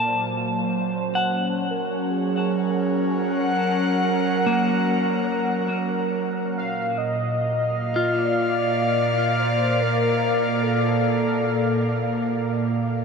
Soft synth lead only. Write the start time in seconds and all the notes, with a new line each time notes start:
0.08 C5
1.71 A#4
2.10 G#4
3.32 A#4
6.58 F5
6.98 D#5
8.18 D5
9.40 C5
9.82 A#4
10.62 A4